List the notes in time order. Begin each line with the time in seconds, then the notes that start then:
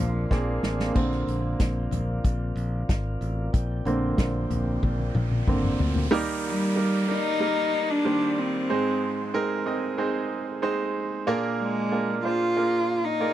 Already playing: A#2 F3 A#3 C4 D4 F4 A#4 D5 F5 C6
0.00 A#1
0.31 A#1 A#3 C4 D4 G#4, kick, snare
0.63 A1, snare
0.80 snare
0.95 A#1 D3 A#3 C4 F4 A#4 D5 F5, kick, crash
1.12 snare
1.27 A#1, closed hi-hat
1.60 A#1, kick, snare, closed hi-hat
1.91 A#1, closed hi-hat, floor tom
2.24 A#1, kick, closed hi-hat
2.56 A#1, closed hi-hat
2.89 G#1, kick, snare, closed hi-hat
3.21 A1, closed hi-hat
3.53 A#1 G5, kick, closed hi-hat, riser
3.85 A#1 D3 A#3 C4, closed hi-hat
4.18 A#1, kick, snare, closed hi-hat
4.50 A#1, closed hi-hat, floor tom
4.83 A#1, kick, high tom
4.99 high tom
5.15 A#1, mid tom
5.31 mid tom
5.47 G#1 D3 A#3 C4, kick, mid tom
5.64 mid tom
5.79 D2, floor tom
5.96 floor tom
6.11 D#3 G3 A#3 D#4 G4 A#4, downlifter
6.47 G3
6.76 G3 A#3 D#4 G4 A#4
7.08 G3 A#3 D#4 G4 A#4
7.40 G3 A#3 D#4 G4 A#4
7.90 D4
8.05 D#3 G3 A#3 G4 C5
8.38 C4
8.69 G#2 G#3 C4 D#4 G#4 C5
9.34 G#3 C4 D#4 G#4 A#4
9.66 G#3 C4 D#4 G#4 D#5
9.98 G#3 C4 D#4 G#4 C5
10.62 G#3 C4 D#4 G#4 C5
11.27 A#2 A#3 D4 F4 G#4 A#4
11.60 G#3
11.92 A#3 D4 F4 G#4 A#4
12.24 A#3 D4 F4 G#4 C5
12.56 A#3 D4 F4 G#4 A#4
13.04 D#4
13.20 A#3 F4 G#4 A#4 D5